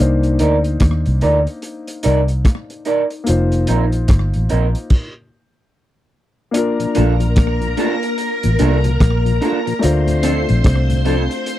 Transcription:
Already playing: grand piano A#3 D4
0.00 fingered electric bass C2, grand piano D#4 C5
0.23 closed hi-hat
0.39 fingered electric bass D2, clean electric guitar D#4 A#4 D5, closed hi-hat
0.64 closed hi-hat
0.80 fingered electric bass D#2, kick, cross-stick, closed hi-hat
1.06 fingered electric bass C2, closed hi-hat
1.21 fingered electric bass D2, clean electric guitar D#4 A#4 D5, closed hi-hat
1.47 closed hi-hat
1.62 closed hi-hat
1.88 closed hi-hat
2.03 fingered electric bass C2, clean electric guitar D#4 A#4 D5, closed hi-hat
2.28 closed hi-hat
2.45 kick, cross-stick, closed hi-hat
2.70 closed hi-hat
2.85 clean electric guitar D#4 A#4 D5, closed hi-hat
3.10 closed hi-hat
3.24 grand piano A#3 D#4 F4, closed hi-hat
3.29 fingered electric bass F1, grand piano C5
3.52 closed hi-hat
3.67 fingered electric bass A#1, clean electric guitar C4 D#4 A#4, closed hi-hat
3.92 closed hi-hat
4.08 fingered electric bass G1, kick, cross-stick, closed hi-hat
4.34 fingered electric bass A1, closed hi-hat
4.49 fingered electric bass A#1, clean electric guitar C4 D#4 A#4, closed hi-hat
4.75 closed hi-hat
4.90 kick, crash
6.51 grand piano A#3 D4 F4, string machine A#4 A#5, closed hi-hat
6.57 grand piano A#4
6.79 tonewheel organ A#2 F3, closed hi-hat
6.95 fingered electric bass A#1, tonewheel organ A3 A#3 D4, clean electric guitar D4 F4 A4, closed hi-hat
7.20 tonewheel organ A#2 F3, closed hi-hat
7.36 kick, cross-stick, closed hi-hat
7.61 tonewheel organ A#2 F3, closed hi-hat
7.77 tonewheel organ A3 A#3 D4, clean electric guitar D4 F4 A4, closed hi-hat
8.02 muted clean electric guitar stroke, closed hi-hat
8.18 closed hi-hat
8.43 fingered electric bass A1, tonewheel organ A#2 F3, closed hi-hat
8.59 fingered electric bass C2, tonewheel organ A3 A#3 D4, clean electric guitar D4 F4 A4, closed hi-hat
8.84 tonewheel organ A#2 F3, muted clean electric guitar stroke, closed hi-hat
9.00 fingered electric bass A#1, kick, cross-stick, closed hi-hat
9.25 tonewheel organ A#2 F3, closed hi-hat
9.41 tonewheel organ A3 A#3 D4, clean electric guitar D4 F4 A4, closed hi-hat
9.66 tonewheel organ A#2 F3, muted clean electric guitar stroke, closed hi-hat
9.79 grand piano A3 D4 F4, string machine C5 C6, closed hi-hat
9.84 fingered electric bass D2, grand piano C5
10.07 tonewheel organ D2 A2, closed hi-hat
10.22 tonewheel organ F3 C4 D4, clean electric guitar C4 F4 A4, closed hi-hat
10.48 fingered electric bass A#1, tonewheel organ D2 A2, closed hi-hat
10.64 fingered electric bass C2, kick, cross-stick, closed hi-hat
10.89 tonewheel organ D2 A2, closed hi-hat
11.05 tonewheel organ F3 C4 D4, clean electric guitar C4 F4 A4, closed hi-hat
11.30 muted clean electric guitar stroke, closed hi-hat
11.46 closed hi-hat

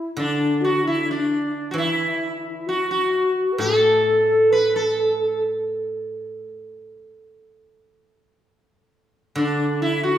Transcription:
Already playing: sitar E4, xiao E4
0.17 guzheng D3, xiao D4, sitar D4
0.61 xiao F#4, sitar F#4
0.83 xiao E4, sitar E4
1.06 xiao D4
1.11 sitar D4
1.71 guzheng E3, xiao E4, sitar F#4
1.78 sitar E4
2.67 xiao F#4, sitar F#4
2.89 xiao F#4, sitar F#4
3.52 xiao B4
3.58 guzheng A2, xiao A4, sitar A4
4.27 xiao A4
4.50 xiao B4, sitar B4
4.74 xiao A4, sitar A4
9.36 guzheng D3, xiao D4, sitar D4
9.81 xiao E4, sitar E4
10.03 sitar F#4, xiao F#4

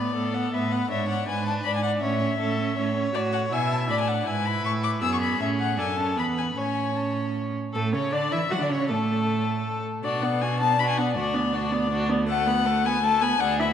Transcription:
Already playing: cello A2, viola B3, violin B4 D5
0.15 cello A2, viola B3, violin A4
0.34 viola B3, violin F#5
0.53 cello A2, viola B3, violin B4 E5
0.72 viola B3, violin F#5
0.90 cello G#2, viola D4, violin C#5 E5
1.09 viola D4, violin F#5
1.28 cello G#2, viola D4, violin B4 G#5
1.46 viola D4, violin A5
1.64 cello G#2, viola D4, violin D5 B5
1.76 violin G#5
1.83 viola D4, violin F#5
2.01 cello A2, viola C#4, violin C#5 E5
2.20 viola C#4
2.40 cello A2, viola C#4, violin A4
2.59 viola C#4
2.77 cello A2, viola C#4, violin C#5
2.96 viola C#4
3.14 cello A2, viola F#4, violin D5
3.33 violin F#5
3.52 cello B2, viola E4, violin E5 G#5
3.72 violin A5
3.89 cello A2, viola D4, violin D5 B5
4.00 violin G#5
4.08 violin F#5
4.27 cello G#2, viola E4, violin B4 G#5
4.46 violin B5
4.64 cello A2, violin C#6
4.83 violin D6
5.01 cello F#2, viola B3, violin G#4 E6
5.14 violin C#6
5.21 violin B5
5.40 cello A2, viola C#4, violin E5
5.60 violin F#5
5.78 cello F#2, viola D4, violin A4 G#5
5.97 viola C#4, violin A5
6.16 cello E2, viola B3, violin B4 B5
6.38 violin G#5
6.56 cello A2, viola C#4, violin C#5 G#5
6.96 viola C#4, violin A5
7.73 cello A2, viola A3, violin A4
7.93 cello C#3, viola C#4, violin C#5
8.12 cello D3, viola D4, violin D5
8.32 cello E3, viola E4, violin E5
8.50 cello F#3, viola F#4, violin F#5
8.60 cello D3, viola D4, violin D5
8.69 cello C#3, viola C#4, violin C#5
8.89 cello A2, viola A3, violin A4
10.04 cello B2, viola D4, violin F#4 D5
10.22 viola B3, violin D4 F#5
10.42 viola D4, violin F#4 G#5
10.60 viola B3, violin D4 A5
10.79 viola D4, violin F#4 B5
10.89 violin G#5
10.97 viola B3, violin D4 F#5
11.15 cello D2, viola D4, violin F#4 D5
11.34 viola B3, violin D4
11.53 viola D4, violin F#4
11.72 viola B3, violin D4
11.91 viola D4, violin F#4
12.09 viola B3, violin D4
12.28 viola A3, violin A4 F#5
12.46 viola B3, violin B4
12.65 viola A3, violin A4
12.84 viola B3, violin B4 G#5
13.02 viola A3, violin A4 A5
13.21 viola B3, violin B4 G#5
13.40 cello D2, viola D4, violin G#4 F#5
13.59 viola E4, violin B4 E5

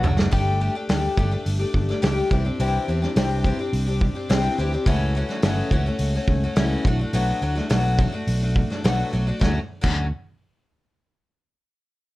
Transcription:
0.03 fingered electric bass F#1, twelve-string acoustic guitar F#3 A3 D4 F#4, floor tom
0.17 twelve-string acoustic guitar A3 D4 F#4, snare
0.31 fingered electric bass G1, twelve-string acoustic guitar G3 A3 D4 G4, kick, open hi-hat
0.60 twelve-string acoustic guitar G3 A3 D4 G4
0.75 twelve-string acoustic guitar A3 D4 G4
0.89 fingered electric bass D2, twelve-string acoustic guitar G3 A3 D4 G4, snare, open hi-hat
1.17 fingered electric bass G1, twelve-string acoustic guitar G3 A3 D4 G4, kick
1.31 twelve-string acoustic guitar A3 D4 G4
1.46 fingered electric bass G1, open hi-hat
1.59 twelve-string acoustic guitar A3 D4 G4
1.74 fingered electric bass G1, kick
1.89 twelve-string acoustic guitar A3 D4 G4, snare
2.02 fingered electric bass C#2, twelve-string acoustic guitar G3 A3 D4 G4, snare, open hi-hat
2.31 fingered electric bass C2, twelve-string acoustic guitar E3 C4 D4 G4, kick
2.44 twelve-string acoustic guitar C4 D4 G4
2.60 fingered electric bass C2, twelve-string acoustic guitar C3 E3 C4 D4 G4, open hi-hat
2.88 fingered electric bass E2, twelve-string acoustic guitar E3 C4 D4 G4
3.02 twelve-string acoustic guitar C4 D4 G4, snare
3.16 fingered electric bass C2, twelve-string acoustic guitar C3 E3 C4 D4 G4, snare, open hi-hat
3.45 twelve-string acoustic guitar E3 C4 D4 G4, kick
3.59 twelve-string acoustic guitar C4 D4 G4
3.73 fingered electric bass C2, open hi-hat
3.87 twelve-string acoustic guitar C4 D4 G4
4.01 kick
4.15 twelve-string acoustic guitar C4 D4 G4
4.29 fingered electric bass C2, twelve-string acoustic guitar C3 E3 C4 D4 G4, snare, open hi-hat
4.58 fingered electric bass D2, twelve-string acoustic guitar E3 C4 D4 G4
4.73 twelve-string acoustic guitar C4 D4 G4
4.86 fingered electric bass C#2, twelve-string acoustic guitar C#3 E3 A3 C#4 F#4, kick, open hi-hat
5.15 twelve-string acoustic guitar E3 A3 C#4 F#4
5.29 twelve-string acoustic guitar A3 C#4 F#4, snare
5.43 fingered electric bass G1, twelve-string acoustic guitar C#3 E3 A3 C#4 F#4, snare, open hi-hat
5.71 fingered electric bass C#2, twelve-string acoustic guitar E3 A3 C#4 F#4, kick
5.86 twelve-string acoustic guitar A3 C#4 F#4
5.99 fingered electric bass C#2, open hi-hat
6.16 twelve-string acoustic guitar A3 C#4 F#4
6.28 fingered electric bass C#2, kick
6.44 twelve-string acoustic guitar A3 C#4 F#4
6.56 fingered electric bass C#2, twelve-string acoustic guitar C#3 E3 A3 C#4 F#4, snare, open hi-hat
6.85 fingered electric bass B1, twelve-string acoustic guitar F#3 A3 D4 F#4, kick
6.99 twelve-string acoustic guitar A3 D4 F#4
7.13 fingered electric bass B1, twelve-string acoustic guitar B2 F#3 A3 D4 F#4, open hi-hat
7.42 fingered electric bass D2, twelve-string acoustic guitar F#3 A3 D4 F#4
7.55 twelve-string acoustic guitar A3 D4 F#4, snare
7.69 fingered electric bass B1, twelve-string acoustic guitar B2 F#3 A3 D4 F#4, snare, open hi-hat
7.98 twelve-string acoustic guitar F#3 A3 D4 F#4, kick
8.12 twelve-string acoustic guitar A3 D4 F#4
8.27 fingered electric bass B1, open hi-hat
8.42 twelve-string acoustic guitar A3 D4 F#4
8.56 kick
8.70 twelve-string acoustic guitar A3 D4 F#4, snare
8.84 fingered electric bass B1, twelve-string acoustic guitar B2 F#3 A3 D4 F#4, snare, open hi-hat
9.12 fingered electric bass B1, twelve-string acoustic guitar F#3 A3 D4 F#4
9.27 twelve-string acoustic guitar A3 D4 F#4
9.39 fingered electric bass D2, twelve-string acoustic guitar D3 F#3 A3 C#4 F#4, kick, snare
9.81 fingered electric bass D2, twelve-string acoustic guitar D3 F#3 A3 C#4 F#4, kick, crash

